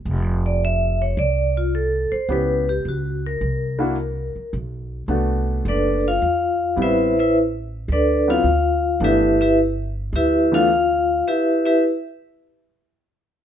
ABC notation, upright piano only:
X:1
M:4/4
L:1/8
Q:"Swing" 1/4=107
K:G
V:1 name="Upright piano"
z8 | [B,^CEG] z4 [_B,DEF] z2 | z2 [A,B,DF]3 z3 | [G,B,CE] z4 [F,B,CE] z2 |
[E,A,B,D] z4 [E,A,B,D] z2 | z8 |]